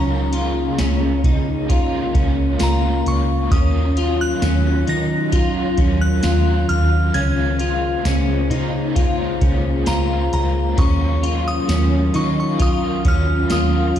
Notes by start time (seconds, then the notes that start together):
Already playing: C#2 C#3 G#3 A#3 C#4 F4 G#4 A#4 A#5
0.33 F4, closed hi-hat
0.78 C#2 C#4, snare, closed hi-hat, tambourine
1.24 C#3 D#4, kick, closed hi-hat
1.69 G#3 C#4 F4 A#4, kick, closed hi-hat
2.14 C#2 C#4, kick, closed hi-hat
2.59 C#2 G#3 C#4 F4 A#4 A#5, snare, closed hi-hat, tambourine
3.06 C#2 C#6, closed hi-hat
3.50 D#2 D#3 F#3 C#4 F4 D#6, kick, closed hi-hat
3.55 F4 A#4
3.97 F4, closed hi-hat
4.21 F#6
4.42 D#2 C#4, snare, closed hi-hat, tambourine
4.87 D#3 D#4 A#6, closed hi-hat
5.32 F#3 C#4 F4, kick, closed hi-hat
5.37 A#4
5.78 D#2 C#4, kick, closed hi-hat
6.01 F#6
6.23 D#2 F#3 C#4 F4, snare, closed hi-hat, tambourine
6.27 A#4
6.69 D#2 F6, closed hi-hat
7.14 C#2 C#3 G#3 A#3 C#4 F4 G#4 A#4 C5 G#6, closed hi-hat
7.59 F4, closed hi-hat
8.05 C#2 C#4, snare, closed hi-hat, tambourine
8.50 C#3 D#4 F4 A#4, closed hi-hat
8.55 C#4
8.95 G#3 C#4 F4 A#4, kick, closed hi-hat
9.41 C#2 C#4, kick, closed hi-hat
9.86 C#2 G#3 C#4 F4 A#5, snare, closed hi-hat, tambourine
9.91 A#4
10.33 C#2 A#5, closed hi-hat
10.77 D#2 D#3 F#3 C#4 F4 A#4 C#6, kick, closed hi-hat
11.23 F4, closed hi-hat
11.48 D#6
11.69 D#2 C#4, snare, closed hi-hat, tambourine
12.14 D#3 D#4 F4 A#4 C#6, closed hi-hat
12.18 C#4
12.40 C#6
12.59 F#3 C#4 F4 D#6, kick, closed hi-hat
12.63 A#4
13.05 D#2 C#4 F6, kick, closed hi-hat
13.49 D#2 F#3 C#4 F4 A#4 D#6, snare, closed hi-hat, tambourine
13.96 closed hi-hat